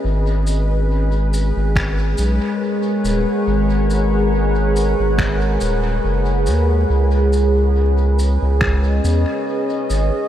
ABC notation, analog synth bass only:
X:1
M:4/4
L:1/16
Q:"Swing 16ths" 1/4=70
K:G#m
V:1 name="Analog synth bass" clef=bass
G,,,6- G,,, G,,,3 B,,, z3 D,,, z | G,,,6- G,,, G,,,3 D,,,2 F,,,2 D,,2 | C,,6- C,, C,,3 E,, z3 G,,, z |]